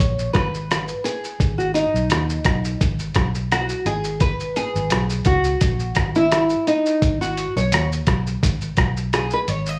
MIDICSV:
0, 0, Header, 1, 4, 480
1, 0, Start_track
1, 0, Key_signature, 5, "minor"
1, 0, Tempo, 701754
1, 959, Time_signature, 4, 2, 24, 8
1, 6698, End_track
2, 0, Start_track
2, 0, Title_t, "Nylon-string guitar"
2, 0, Program_c, 0, 24
2, 0, Note_on_c, 0, 73, 107
2, 225, Note_off_c, 0, 73, 0
2, 227, Note_on_c, 0, 71, 94
2, 686, Note_off_c, 0, 71, 0
2, 713, Note_on_c, 0, 68, 88
2, 1081, Note_on_c, 0, 66, 77
2, 1100, Note_off_c, 0, 68, 0
2, 1188, Note_off_c, 0, 66, 0
2, 1191, Note_on_c, 0, 63, 77
2, 1889, Note_off_c, 0, 63, 0
2, 2407, Note_on_c, 0, 66, 80
2, 2642, Note_on_c, 0, 68, 80
2, 2651, Note_off_c, 0, 66, 0
2, 2865, Note_off_c, 0, 68, 0
2, 2882, Note_on_c, 0, 71, 93
2, 3120, Note_off_c, 0, 71, 0
2, 3123, Note_on_c, 0, 68, 97
2, 3600, Note_on_c, 0, 66, 91
2, 3616, Note_off_c, 0, 68, 0
2, 4212, Note_on_c, 0, 64, 86
2, 4231, Note_off_c, 0, 66, 0
2, 4536, Note_off_c, 0, 64, 0
2, 4563, Note_on_c, 0, 63, 86
2, 4929, Note_off_c, 0, 63, 0
2, 4932, Note_on_c, 0, 66, 87
2, 5155, Note_off_c, 0, 66, 0
2, 5175, Note_on_c, 0, 73, 97
2, 5397, Note_off_c, 0, 73, 0
2, 6249, Note_on_c, 0, 68, 98
2, 6368, Note_off_c, 0, 68, 0
2, 6384, Note_on_c, 0, 71, 93
2, 6418, Note_off_c, 0, 71, 0
2, 6489, Note_on_c, 0, 73, 98
2, 6627, Note_off_c, 0, 73, 0
2, 6627, Note_on_c, 0, 75, 101
2, 6698, Note_off_c, 0, 75, 0
2, 6698, End_track
3, 0, Start_track
3, 0, Title_t, "Fingered electric bass"
3, 0, Program_c, 1, 33
3, 0, Note_on_c, 1, 34, 97
3, 190, Note_off_c, 1, 34, 0
3, 238, Note_on_c, 1, 32, 83
3, 623, Note_off_c, 1, 32, 0
3, 959, Note_on_c, 1, 32, 100
3, 1257, Note_off_c, 1, 32, 0
3, 1327, Note_on_c, 1, 35, 93
3, 1415, Note_off_c, 1, 35, 0
3, 1434, Note_on_c, 1, 39, 78
3, 1629, Note_off_c, 1, 39, 0
3, 1679, Note_on_c, 1, 35, 80
3, 1872, Note_off_c, 1, 35, 0
3, 1924, Note_on_c, 1, 32, 98
3, 2115, Note_off_c, 1, 32, 0
3, 2161, Note_on_c, 1, 35, 85
3, 2545, Note_off_c, 1, 35, 0
3, 2636, Note_on_c, 1, 32, 94
3, 3128, Note_off_c, 1, 32, 0
3, 3252, Note_on_c, 1, 32, 95
3, 3339, Note_off_c, 1, 32, 0
3, 3361, Note_on_c, 1, 35, 91
3, 3553, Note_off_c, 1, 35, 0
3, 3597, Note_on_c, 1, 37, 87
3, 3791, Note_off_c, 1, 37, 0
3, 3843, Note_on_c, 1, 34, 99
3, 4034, Note_off_c, 1, 34, 0
3, 4081, Note_on_c, 1, 32, 91
3, 4465, Note_off_c, 1, 32, 0
3, 4804, Note_on_c, 1, 32, 103
3, 5100, Note_off_c, 1, 32, 0
3, 5174, Note_on_c, 1, 35, 98
3, 5260, Note_off_c, 1, 35, 0
3, 5280, Note_on_c, 1, 39, 84
3, 5472, Note_off_c, 1, 39, 0
3, 5521, Note_on_c, 1, 35, 87
3, 5713, Note_off_c, 1, 35, 0
3, 5766, Note_on_c, 1, 32, 100
3, 5956, Note_off_c, 1, 32, 0
3, 6004, Note_on_c, 1, 35, 84
3, 6386, Note_off_c, 1, 35, 0
3, 6484, Note_on_c, 1, 32, 97
3, 6698, Note_off_c, 1, 32, 0
3, 6698, End_track
4, 0, Start_track
4, 0, Title_t, "Drums"
4, 0, Note_on_c, 9, 36, 93
4, 1, Note_on_c, 9, 42, 77
4, 1, Note_on_c, 9, 82, 83
4, 66, Note_off_c, 9, 36, 0
4, 69, Note_off_c, 9, 42, 0
4, 69, Note_off_c, 9, 82, 0
4, 129, Note_on_c, 9, 82, 47
4, 197, Note_off_c, 9, 82, 0
4, 236, Note_on_c, 9, 42, 47
4, 236, Note_on_c, 9, 82, 49
4, 239, Note_on_c, 9, 36, 83
4, 247, Note_on_c, 9, 37, 88
4, 304, Note_off_c, 9, 42, 0
4, 304, Note_off_c, 9, 82, 0
4, 307, Note_off_c, 9, 36, 0
4, 315, Note_off_c, 9, 37, 0
4, 372, Note_on_c, 9, 82, 51
4, 441, Note_off_c, 9, 82, 0
4, 484, Note_on_c, 9, 42, 62
4, 484, Note_on_c, 9, 82, 65
4, 489, Note_on_c, 9, 37, 83
4, 553, Note_off_c, 9, 42, 0
4, 553, Note_off_c, 9, 82, 0
4, 558, Note_off_c, 9, 37, 0
4, 603, Note_on_c, 9, 82, 44
4, 671, Note_off_c, 9, 82, 0
4, 721, Note_on_c, 9, 42, 54
4, 721, Note_on_c, 9, 82, 53
4, 789, Note_off_c, 9, 42, 0
4, 789, Note_off_c, 9, 82, 0
4, 850, Note_on_c, 9, 82, 51
4, 918, Note_off_c, 9, 82, 0
4, 957, Note_on_c, 9, 36, 94
4, 960, Note_on_c, 9, 42, 55
4, 960, Note_on_c, 9, 82, 57
4, 1026, Note_off_c, 9, 36, 0
4, 1029, Note_off_c, 9, 42, 0
4, 1029, Note_off_c, 9, 82, 0
4, 1092, Note_on_c, 9, 82, 47
4, 1161, Note_off_c, 9, 82, 0
4, 1198, Note_on_c, 9, 42, 51
4, 1198, Note_on_c, 9, 82, 51
4, 1267, Note_off_c, 9, 42, 0
4, 1267, Note_off_c, 9, 82, 0
4, 1338, Note_on_c, 9, 82, 45
4, 1406, Note_off_c, 9, 82, 0
4, 1436, Note_on_c, 9, 42, 69
4, 1436, Note_on_c, 9, 82, 74
4, 1449, Note_on_c, 9, 37, 87
4, 1504, Note_off_c, 9, 42, 0
4, 1504, Note_off_c, 9, 82, 0
4, 1517, Note_off_c, 9, 37, 0
4, 1571, Note_on_c, 9, 82, 58
4, 1639, Note_off_c, 9, 82, 0
4, 1673, Note_on_c, 9, 42, 59
4, 1673, Note_on_c, 9, 82, 57
4, 1677, Note_on_c, 9, 36, 93
4, 1682, Note_on_c, 9, 37, 94
4, 1741, Note_off_c, 9, 42, 0
4, 1741, Note_off_c, 9, 82, 0
4, 1746, Note_off_c, 9, 36, 0
4, 1751, Note_off_c, 9, 37, 0
4, 1810, Note_on_c, 9, 82, 58
4, 1878, Note_off_c, 9, 82, 0
4, 1922, Note_on_c, 9, 36, 93
4, 1923, Note_on_c, 9, 42, 81
4, 1923, Note_on_c, 9, 82, 82
4, 1990, Note_off_c, 9, 36, 0
4, 1991, Note_off_c, 9, 42, 0
4, 1991, Note_off_c, 9, 82, 0
4, 2046, Note_on_c, 9, 82, 49
4, 2115, Note_off_c, 9, 82, 0
4, 2152, Note_on_c, 9, 42, 52
4, 2152, Note_on_c, 9, 82, 48
4, 2159, Note_on_c, 9, 36, 82
4, 2162, Note_on_c, 9, 37, 89
4, 2220, Note_off_c, 9, 42, 0
4, 2220, Note_off_c, 9, 82, 0
4, 2228, Note_off_c, 9, 36, 0
4, 2231, Note_off_c, 9, 37, 0
4, 2290, Note_on_c, 9, 82, 50
4, 2358, Note_off_c, 9, 82, 0
4, 2405, Note_on_c, 9, 42, 65
4, 2405, Note_on_c, 9, 82, 64
4, 2410, Note_on_c, 9, 37, 88
4, 2473, Note_off_c, 9, 42, 0
4, 2473, Note_off_c, 9, 82, 0
4, 2478, Note_off_c, 9, 37, 0
4, 2525, Note_on_c, 9, 82, 48
4, 2593, Note_off_c, 9, 82, 0
4, 2640, Note_on_c, 9, 42, 52
4, 2640, Note_on_c, 9, 82, 54
4, 2709, Note_off_c, 9, 42, 0
4, 2709, Note_off_c, 9, 82, 0
4, 2765, Note_on_c, 9, 82, 58
4, 2833, Note_off_c, 9, 82, 0
4, 2875, Note_on_c, 9, 42, 58
4, 2875, Note_on_c, 9, 82, 57
4, 2878, Note_on_c, 9, 36, 91
4, 2944, Note_off_c, 9, 42, 0
4, 2944, Note_off_c, 9, 82, 0
4, 2946, Note_off_c, 9, 36, 0
4, 3010, Note_on_c, 9, 82, 48
4, 3079, Note_off_c, 9, 82, 0
4, 3120, Note_on_c, 9, 42, 49
4, 3120, Note_on_c, 9, 82, 52
4, 3189, Note_off_c, 9, 42, 0
4, 3189, Note_off_c, 9, 82, 0
4, 3254, Note_on_c, 9, 82, 46
4, 3322, Note_off_c, 9, 82, 0
4, 3354, Note_on_c, 9, 42, 75
4, 3354, Note_on_c, 9, 82, 74
4, 3367, Note_on_c, 9, 37, 87
4, 3422, Note_off_c, 9, 42, 0
4, 3422, Note_off_c, 9, 82, 0
4, 3435, Note_off_c, 9, 37, 0
4, 3487, Note_on_c, 9, 82, 58
4, 3555, Note_off_c, 9, 82, 0
4, 3589, Note_on_c, 9, 42, 57
4, 3589, Note_on_c, 9, 82, 60
4, 3597, Note_on_c, 9, 36, 92
4, 3658, Note_off_c, 9, 42, 0
4, 3658, Note_off_c, 9, 82, 0
4, 3665, Note_off_c, 9, 36, 0
4, 3722, Note_on_c, 9, 82, 59
4, 3790, Note_off_c, 9, 82, 0
4, 3836, Note_on_c, 9, 42, 85
4, 3836, Note_on_c, 9, 82, 83
4, 3840, Note_on_c, 9, 36, 94
4, 3905, Note_off_c, 9, 42, 0
4, 3905, Note_off_c, 9, 82, 0
4, 3908, Note_off_c, 9, 36, 0
4, 3964, Note_on_c, 9, 82, 48
4, 4033, Note_off_c, 9, 82, 0
4, 4070, Note_on_c, 9, 42, 49
4, 4070, Note_on_c, 9, 82, 53
4, 4080, Note_on_c, 9, 36, 93
4, 4081, Note_on_c, 9, 37, 95
4, 4138, Note_off_c, 9, 42, 0
4, 4138, Note_off_c, 9, 82, 0
4, 4148, Note_off_c, 9, 36, 0
4, 4149, Note_off_c, 9, 37, 0
4, 4208, Note_on_c, 9, 82, 49
4, 4276, Note_off_c, 9, 82, 0
4, 4320, Note_on_c, 9, 42, 67
4, 4320, Note_on_c, 9, 82, 65
4, 4325, Note_on_c, 9, 37, 85
4, 4388, Note_off_c, 9, 42, 0
4, 4388, Note_off_c, 9, 82, 0
4, 4393, Note_off_c, 9, 37, 0
4, 4443, Note_on_c, 9, 82, 46
4, 4511, Note_off_c, 9, 82, 0
4, 4564, Note_on_c, 9, 42, 54
4, 4564, Note_on_c, 9, 82, 53
4, 4633, Note_off_c, 9, 42, 0
4, 4633, Note_off_c, 9, 82, 0
4, 4693, Note_on_c, 9, 82, 54
4, 4761, Note_off_c, 9, 82, 0
4, 4802, Note_on_c, 9, 36, 95
4, 4803, Note_on_c, 9, 42, 57
4, 4803, Note_on_c, 9, 82, 57
4, 4870, Note_off_c, 9, 36, 0
4, 4871, Note_off_c, 9, 42, 0
4, 4871, Note_off_c, 9, 82, 0
4, 4939, Note_on_c, 9, 82, 53
4, 5007, Note_off_c, 9, 82, 0
4, 5044, Note_on_c, 9, 42, 51
4, 5044, Note_on_c, 9, 82, 53
4, 5113, Note_off_c, 9, 42, 0
4, 5113, Note_off_c, 9, 82, 0
4, 5181, Note_on_c, 9, 82, 46
4, 5249, Note_off_c, 9, 82, 0
4, 5282, Note_on_c, 9, 42, 78
4, 5282, Note_on_c, 9, 82, 74
4, 5295, Note_on_c, 9, 37, 86
4, 5351, Note_off_c, 9, 42, 0
4, 5351, Note_off_c, 9, 82, 0
4, 5363, Note_off_c, 9, 37, 0
4, 5420, Note_on_c, 9, 82, 59
4, 5488, Note_off_c, 9, 82, 0
4, 5518, Note_on_c, 9, 42, 64
4, 5518, Note_on_c, 9, 82, 61
4, 5521, Note_on_c, 9, 36, 94
4, 5528, Note_on_c, 9, 37, 94
4, 5586, Note_off_c, 9, 42, 0
4, 5586, Note_off_c, 9, 82, 0
4, 5590, Note_off_c, 9, 36, 0
4, 5596, Note_off_c, 9, 37, 0
4, 5655, Note_on_c, 9, 82, 60
4, 5723, Note_off_c, 9, 82, 0
4, 5765, Note_on_c, 9, 36, 96
4, 5769, Note_on_c, 9, 42, 78
4, 5769, Note_on_c, 9, 82, 84
4, 5834, Note_off_c, 9, 36, 0
4, 5837, Note_off_c, 9, 42, 0
4, 5837, Note_off_c, 9, 82, 0
4, 5890, Note_on_c, 9, 82, 48
4, 5959, Note_off_c, 9, 82, 0
4, 5997, Note_on_c, 9, 42, 52
4, 5997, Note_on_c, 9, 82, 52
4, 6003, Note_on_c, 9, 36, 91
4, 6008, Note_on_c, 9, 37, 96
4, 6065, Note_off_c, 9, 42, 0
4, 6065, Note_off_c, 9, 82, 0
4, 6071, Note_off_c, 9, 36, 0
4, 6076, Note_off_c, 9, 37, 0
4, 6135, Note_on_c, 9, 82, 53
4, 6203, Note_off_c, 9, 82, 0
4, 6245, Note_on_c, 9, 42, 62
4, 6245, Note_on_c, 9, 82, 68
4, 6250, Note_on_c, 9, 37, 86
4, 6314, Note_off_c, 9, 42, 0
4, 6314, Note_off_c, 9, 82, 0
4, 6319, Note_off_c, 9, 37, 0
4, 6365, Note_on_c, 9, 82, 47
4, 6433, Note_off_c, 9, 82, 0
4, 6484, Note_on_c, 9, 42, 54
4, 6484, Note_on_c, 9, 82, 57
4, 6552, Note_off_c, 9, 42, 0
4, 6552, Note_off_c, 9, 82, 0
4, 6609, Note_on_c, 9, 82, 58
4, 6677, Note_off_c, 9, 82, 0
4, 6698, End_track
0, 0, End_of_file